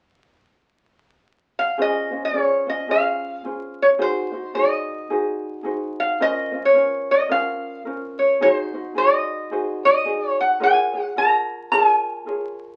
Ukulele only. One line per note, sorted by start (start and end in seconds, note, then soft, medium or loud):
1.78 2.11 C#4 medium
1.78 2.11 F4 medium
1.78 2.11 G#4 medium
1.78 2.10 C5 medium
2.11 2.33 C#4 soft
2.11 2.33 F4 soft
2.11 2.33 C5 soft
2.33 2.67 C#4 soft
2.33 2.67 F4 medium
2.33 2.66 G#4 soft
2.33 2.65 C5 medium
2.67 2.88 C#4 soft
2.67 2.88 F4 soft
2.67 2.89 C5 soft
2.88 3.44 C#4 medium
2.88 3.44 F4 medium
2.88 3.43 G#4 medium
2.88 3.46 C5 medium
3.44 3.98 C#4 medium
3.44 3.99 F4 medium
3.44 3.98 G#4 soft
3.44 3.99 C5 medium
3.98 4.32 D#4 medium
3.98 4.32 F#4 medium
3.98 4.32 G#4 medium
3.98 4.31 C5 medium
4.32 4.54 D#4 soft
4.32 4.55 F#4 soft
4.32 4.54 C5 soft
4.54 5.09 D#4 medium
4.54 5.09 F#4 medium
4.54 5.09 G#4 medium
4.54 5.11 C5 medium
5.10 5.63 D#4 medium
5.10 5.64 F#4 medium
5.10 5.62 G#4 medium
5.10 5.66 C5 medium
5.63 6.20 D#4 medium
5.63 6.20 F#4 medium
5.63 6.19 G#4 medium
5.63 6.21 C5 medium
6.20 6.53 C#4 medium
6.20 6.52 F4 medium
6.20 6.53 A#4 medium
6.20 6.51 C5 medium
6.52 6.74 C#4 soft
6.52 6.75 F4 soft
6.52 6.74 C5 soft
6.74 7.29 C#4 medium
6.74 7.29 F4 medium
6.74 7.28 A#4 medium
6.74 7.31 C5 medium
7.29 7.85 C#4 medium
7.29 7.85 F4 medium
7.29 7.84 A#4 medium
7.29 7.87 C5 medium
7.85 8.41 C#4 medium
7.85 8.41 F4 medium
7.85 8.40 A#4 medium
7.85 8.42 C5 medium
8.40 8.74 D#4 medium
8.40 8.73 F#4 medium
8.40 8.73 G#4 medium
8.40 8.72 C5 medium
8.73 8.94 D#4 soft
8.73 8.95 F#4 soft
8.73 8.95 C5 soft
8.95 9.50 D#4 medium
8.95 9.51 F#4 medium
8.95 9.51 G#4 medium
8.95 9.51 C5 medium
9.51 10.05 D#4 medium
9.51 10.06 F#4 medium
9.51 10.05 G#4 medium
9.51 10.06 C5 medium
10.05 10.60 D#4 soft
10.05 10.61 F#4 medium
10.05 10.59 G#4 medium
10.05 10.61 C5 soft
10.60 10.93 F4 medium
10.60 10.93 G#4 medium
10.60 10.93 A#4 medium
10.60 10.92 C#5 medium
10.93 11.16 F4 soft
10.93 11.16 G#4 soft
10.93 11.15 C#5 soft
11.16 11.73 F4 medium
11.16 11.71 G#4 medium
11.16 11.72 A#4 medium
11.16 11.73 C#5 medium
11.72 12.26 F4 medium
11.72 12.26 G#4 medium
11.72 12.26 A#4 medium
11.72 12.28 C#5 medium
12.26 12.76 F4 medium
12.26 12.76 G#4 medium
12.26 12.76 A#4 soft
12.26 12.76 C#5 medium